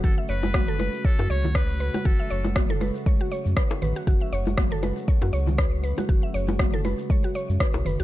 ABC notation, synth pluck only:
X:1
M:4/4
L:1/16
Q:"Swing 16ths" 1/4=119
K:F#m
V:1 name="Synth pluck"
F e c z F A B z c F c z B z B F | F e c z F A B z c F c z B z B F | F e c z F A B z c F c z B z B F | F e c z F A B z c F c z B z B F |]